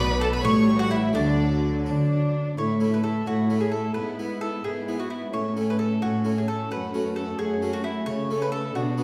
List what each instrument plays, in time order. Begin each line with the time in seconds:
Already playing: double bass section B1, harpsichord B2 B3 D4, cello section B2, viola section B3, violin section B4 B5
0.00 mandolin B4
0.20 violin section A4 A5, mandolin A4
0.33 violin section B4 B5, mandolin B4
0.42 double bass section A1, harpsichord A2 A3 E4, cello section A2, viola section G3, violin section C#5 C#6, mandolin C#5
0.79 violin section F#4 F#5, mandolin F#4
0.91 mandolin E4, violin section E4 E5
1.13 double bass section D2, cello section D3, harpsichord D3 A3 D4, viola section F#3, mandolin D4, violin section D4 D5
1.86 double bass section D3, harpsichord D4, cello section D4
2.57 harpsichord A2, cello section A2, viola section A3, violin section E4 E5, mandolin C#5
2.80 harpsichord A3 C#4 E4, viola section A3, violin section E4 E5
2.94 mandolin B4
3.03 viola section A3, violin section E4 E5, mandolin A4
3.26 harpsichord A2, cello section A2, viola section A3, violin section E4 E5, mandolin F#4
3.49 viola section A3, harpsichord A3 C#4 E4, violin section E4 E5
3.60 mandolin G#4
3.71 viola section A3, violin section E4 E5, mandolin A4
3.94 cello section G#2, harpsichord G#2, viola section B3, violin section E4 E5, mandolin B4
4.19 viola section B3, harpsichord B3 E4, violin section E4 E5
4.41 viola section B3, violin section E4 E5, mandolin A4
4.63 cello section G#2, harpsichord G#2, viola section B3, violin section E4 E5, mandolin G#4
4.87 viola section B3, harpsichord B3 E4, violin section E4 E5
4.99 mandolin F#4
5.10 viola section B3, mandolin E4, violin section E4 E5
5.33 cello section A2, harpsichord A2, viola section A3, violin section C#4 E5, mandolin C#5
5.55 viola section A3, harpsichord A3 C#4 E4, violin section C#4 E5
5.70 mandolin B4
5.78 viola section A3, violin section C#4 E5, mandolin A4
6.02 harpsichord A2, cello section A2, viola section A3, violin section C#4 E5, mandolin F#4
6.25 harpsichord A3 C#4 E4, viola section A3, violin section C#4 E5
6.38 mandolin G#4
6.47 viola section A3, violin section C#4 E5, mandolin A4
6.70 cello section F#2, harpsichord F#2, viola section A3, violin section C#4 F#5, mandolin B4
6.93 viola section A3, harpsichord A3 C#4 F#4, violin section C#4 F#5
7.16 viola section A3, violin section C#4 F#5, mandolin A4
7.38 cello section F#2, harpsichord F#2, viola section A3, violin section C#4 F#5, mandolin G#4
7.60 viola section A3, harpsichord A3 C#4 F#4, violin section C#4 F#5
7.73 mandolin F#4
7.83 viola section A3, violin section C#4 F#5, mandolin E4
8.06 cello section C#3, harpsichord C#3, viola section A3, violin section C#4 E5, mandolin C#5
8.30 viola section A3, harpsichord A3 C#4 A4, violin section C#4 E5
8.42 mandolin B4
8.51 viola section A3, violin section C#4 E5, mandolin A4
8.74 cello section B2, harpsichord B2, viola section B3, violin section D4 D5, mandolin F#4
8.96 viola section B3, harpsichord B3 D4 F#4, violin section D4 D5